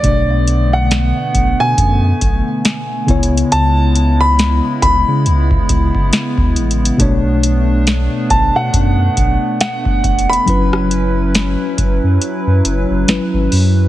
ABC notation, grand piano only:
X:1
M:4/4
L:1/16
Q:"Swing 16ths" 1/4=69
K:Bdor
V:1 name="Grand piano"
d3 f4 g8- g | a3 b3 b8 z2 | z6 a f4- f f3 b- | b12- b2 z2 |]